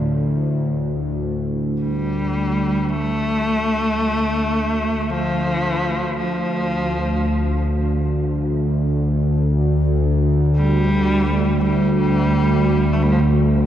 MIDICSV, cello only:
0, 0, Header, 1, 2, 480
1, 0, Start_track
1, 0, Key_signature, -1, "minor"
1, 0, Tempo, 500000
1, 13115, End_track
2, 0, Start_track
2, 0, Title_t, "Cello"
2, 0, Program_c, 0, 42
2, 1745, Note_on_c, 0, 55, 85
2, 2780, Note_on_c, 0, 57, 99
2, 2795, Note_off_c, 0, 55, 0
2, 4900, Note_on_c, 0, 53, 89
2, 4915, Note_off_c, 0, 57, 0
2, 5942, Note_off_c, 0, 53, 0
2, 5947, Note_on_c, 0, 53, 79
2, 7482, Note_off_c, 0, 53, 0
2, 10140, Note_on_c, 0, 55, 105
2, 11149, Note_off_c, 0, 55, 0
2, 11192, Note_on_c, 0, 55, 101
2, 12415, Note_on_c, 0, 57, 81
2, 12429, Note_off_c, 0, 55, 0
2, 12509, Note_on_c, 0, 55, 82
2, 12523, Note_off_c, 0, 57, 0
2, 12596, Note_on_c, 0, 53, 80
2, 12611, Note_off_c, 0, 55, 0
2, 12675, Note_on_c, 0, 55, 67
2, 12689, Note_off_c, 0, 53, 0
2, 12760, Note_off_c, 0, 55, 0
2, 13115, End_track
0, 0, End_of_file